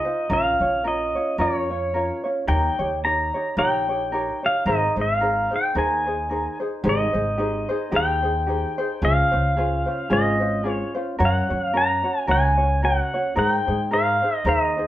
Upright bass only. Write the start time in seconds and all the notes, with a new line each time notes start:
0.30 A#1
0.60 A#1
1.38 F2
2.48 D#2
2.79 D#2
3.57 A#1
4.66 G#1
4.96 G#1
5.75 D#2
6.84 G#1
7.14 G#1
7.92 D#2
9.02 C#2
9.32 C#2
10.10 G#1
11.20 F#2
11.50 F#2
12.28 C#2
13.37 G#2
13.68 G#2
14.45 D#2